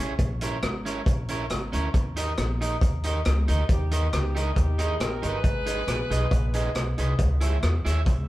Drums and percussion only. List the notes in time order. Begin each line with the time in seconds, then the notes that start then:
0.19 kick, closed hi-hat
0.41 closed hi-hat
0.62 cross-stick, closed hi-hat
0.86 closed hi-hat
1.06 kick, closed hi-hat
1.28 closed hi-hat
1.50 cross-stick, closed hi-hat
1.73 closed hi-hat
1.94 kick, closed hi-hat
2.17 closed hi-hat
2.37 cross-stick, closed hi-hat
2.61 closed hi-hat
2.81 kick, closed hi-hat
3.04 closed hi-hat
3.25 cross-stick, closed hi-hat
3.48 closed hi-hat
3.69 kick, closed hi-hat
3.91 closed hi-hat
4.13 cross-stick, closed hi-hat
4.36 closed hi-hat
4.56 kick, closed hi-hat
4.79 closed hi-hat
5.00 cross-stick, closed hi-hat
5.23 closed hi-hat
5.44 kick, closed hi-hat
5.66 closed hi-hat
5.88 cross-stick, closed hi-hat
6.11 closed hi-hat
6.31 kick, closed hi-hat
6.54 closed hi-hat
6.75 cross-stick, closed hi-hat
6.98 closed hi-hat
7.19 kick, closed hi-hat
7.41 closed hi-hat
7.63 cross-stick, closed hi-hat
7.86 closed hi-hat
8.06 kick, closed hi-hat